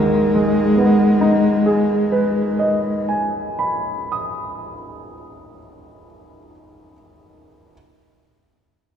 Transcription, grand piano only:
0, 0, Header, 1, 2, 480
1, 0, Start_track
1, 0, Key_signature, 5, "minor"
1, 0, Tempo, 1662050
1, 1091, Tempo, 1709402
1, 2547, End_track
2, 0, Start_track
2, 0, Title_t, "Grand piano"
2, 0, Program_c, 0, 0
2, 0, Control_c, 0, 64, 127
2, 0, Note_on_c, 0, 32, 36
2, 0, Note_on_c, 0, 39, 34
2, 0, Note_on_c, 0, 44, 36
2, 0, Note_on_c, 0, 51, 33
2, 101, Note_on_c, 0, 56, 30
2, 222, Note_on_c, 0, 59, 34
2, 349, Note_on_c, 0, 63, 29
2, 479, Note_on_c, 0, 68, 26
2, 612, Note_on_c, 0, 71, 32
2, 749, Note_on_c, 0, 75, 28
2, 891, Note_on_c, 0, 80, 28
2, 903, Note_off_c, 0, 32, 0
2, 1011, Note_off_c, 0, 39, 0
2, 1036, Note_on_c, 0, 83, 28
2, 1123, Note_off_c, 0, 44, 0
2, 1186, Note_on_c, 0, 87, 22
2, 1239, Note_off_c, 0, 51, 0
2, 1357, Note_off_c, 0, 56, 0
2, 1475, Note_off_c, 0, 59, 0
2, 1599, Note_off_c, 0, 63, 0
2, 1725, Note_off_c, 0, 68, 0
2, 1855, Note_off_c, 0, 71, 0
2, 1975, Note_off_c, 0, 83, 0
2, 1976, Note_off_c, 0, 75, 0
2, 1976, Note_off_c, 0, 80, 0
2, 1976, Note_off_c, 0, 87, 0
2, 2202, Control_c, 0, 64, 0
2, 2547, End_track
0, 0, End_of_file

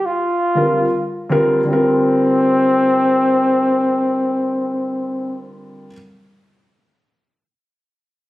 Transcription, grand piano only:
0, 0, Header, 1, 2, 480
1, 0, Start_track
1, 0, Tempo, 750000
1, 1076, Time_signature, 4, 2, 24, 8
1, 5311, End_track
2, 0, Start_track
2, 0, Title_t, "Grand piano"
2, 0, Program_c, 0, 0
2, 351, Note_on_c, 0, 50, 69
2, 354, Note_on_c, 0, 55, 61
2, 359, Note_on_c, 0, 60, 59
2, 363, Note_on_c, 0, 65, 61
2, 366, Note_on_c, 0, 70, 76
2, 536, Note_off_c, 0, 50, 0
2, 538, Note_off_c, 0, 55, 0
2, 540, Note_off_c, 0, 60, 0
2, 542, Note_off_c, 0, 65, 0
2, 544, Note_off_c, 0, 70, 0
2, 829, Note_on_c, 0, 50, 87
2, 834, Note_on_c, 0, 55, 77
2, 838, Note_on_c, 0, 60, 79
2, 842, Note_on_c, 0, 65, 75
2, 844, Note_on_c, 0, 70, 95
2, 1015, Note_off_c, 0, 50, 0
2, 1018, Note_off_c, 0, 55, 0
2, 1020, Note_off_c, 0, 60, 0
2, 1022, Note_off_c, 0, 65, 0
2, 1023, Note_off_c, 0, 70, 0
2, 1047, Note_on_c, 0, 50, 81
2, 1062, Note_on_c, 0, 55, 69
2, 1077, Note_on_c, 0, 60, 68
2, 1091, Note_on_c, 0, 65, 68
2, 1107, Note_on_c, 0, 70, 86
2, 3742, Note_off_c, 0, 50, 0
2, 3757, Note_off_c, 0, 55, 0
2, 3771, Note_off_c, 0, 60, 0
2, 3785, Note_off_c, 0, 65, 0
2, 3801, Note_off_c, 0, 70, 0
2, 5311, End_track
0, 0, End_of_file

